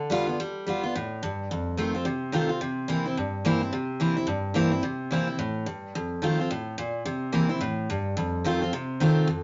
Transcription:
steel-string acoustic guitar
Already playing: D3
0.10 G3 B3 F4
0.27 B3 F4
0.40 G3
0.66 G3 B3 F4
0.83 B3 F4
0.95 A2
1.23 G2
1.51 F2
1.77 D#3 A3 C4 F4
1.94 C4 F4
2.05 C3
2.32 D#3 A3 C4 F4
2.49 C4 F4
2.61 C3
2.88 E3 A#3 C4 E4
3.05 C4 E4
3.17 G2
3.45 E3 A#3 C4 E4
3.61 C4 E4
3.73 C3
4.00 E3 A#3 C4 E4
4.16 C4 E4
4.27 G2
4.54 E3 A#3 C4 E4
4.71 C4 E4
4.83 C3
5.11 E3 A#3 C4 E4
5.27 C4 E4
5.39 A2
5.66 G2
5.95 F2
6.22 D#3 A3 C4 F4
6.40 C4 F4
6.51 A2
6.78 A#2
7.05 C3
7.32 E3 A#3 C4 E4
7.49 C4 E4
7.61 A2
7.90 G2
8.17 F2
8.44 D#3 A3 C4 F4
8.62 C4 F4
8.73 C3
9.00 D#3 A3 C4 F4
9.27 F2

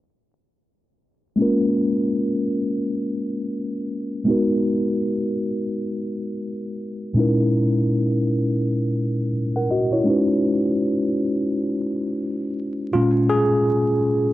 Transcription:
tine electric piano
1.36 G#3 A#3 C#4
1.41 F4 A#4
4.25 G#3 B3 D#4
4.30 F#4 A#4
7.14 A#2 G#3 C#4 D#4
7.19 E4 A#4
9.56 A#4 F#5
9.71 F#4 D#5
9.92 E4 C#5
10.04 G#3 C#4 D#4
10.09 F#4 B4
12.93 A#2 G#3 C#4 F4
13.30 G#4

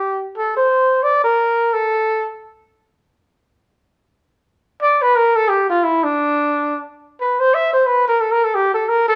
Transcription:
trumpet
Already playing: G4
0.37 A4
0.57 C5
1.03 D5
1.24 A#4
1.74 A4
4.82 D5
5.02 B4
5.16 A#4
5.36 A4
5.49 G4
5.70 F4
5.84 E4
6.03 D4
7.20 B4
7.40 C5
7.54 E5
7.73 C5
7.86 B4
8.08 A#4
8.21 A4
8.32 A#4
8.44 A4
8.55 G4
8.74 A4
8.88 A#4
9.08 A4

